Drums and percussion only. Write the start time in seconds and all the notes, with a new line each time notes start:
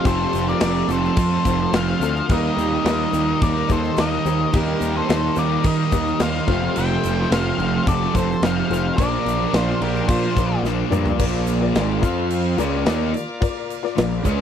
0.05 kick, crash, shaker
0.33 crash, shaker
0.49 shaker
0.60 snare, crash, shaker
0.89 crash, shaker
1.05 shaker
1.17 kick, crash, shaker
1.45 kick, crash, shaker
1.73 snare, crash, shaker
1.88 snare
2.01 crash, shaker
2.16 shaker
2.29 kick, crash, shaker
2.58 crash, shaker
2.85 snare, crash, shaker
3.14 crash, shaker
3.42 kick, crash, shaker
3.69 kick, crash, shaker
3.84 shaker
3.97 snare, crash, shaker
4.13 snare
4.26 crash, shaker
4.54 kick, crash, shaker
4.81 crash, shaker
5.09 snare, crash, shaker
5.36 crash, shaker
5.64 kick, crash, shaker
5.92 kick, crash, shaker
6.07 shaker
6.20 snare, crash, shaker
6.35 snare
6.48 kick, crash
6.76 crash, shaker
7.03 crash, shaker
7.32 snare, crash, shaker
7.60 crash
7.87 kick, crash, shaker
8.15 kick, crash, shaker
8.32 shaker
8.42 snare, crash, shaker
8.71 crash, shaker
8.98 kick, crash, shaker
9.26 crash, shaker
9.54 snare, crash, shaker
9.82 crash
9.95 shaker
10.08 kick, crash, shaker
10.37 kick, crash, shaker
10.65 snare, shaker
10.92 mid tom, shaker
11.05 floor tom, shaker
11.20 kick, crash, shaker
11.47 crash, shaker
11.75 snare, crash, shaker
12.03 kick, crash, shaker
12.30 crash, shaker
12.58 crash, shaker
12.86 snare, crash, shaker
13.14 crash, shaker
13.42 kick, crash, shaker
13.70 crash, shaker
13.84 snare
13.98 snare, crash, shaker
14.25 kick, crash, shaker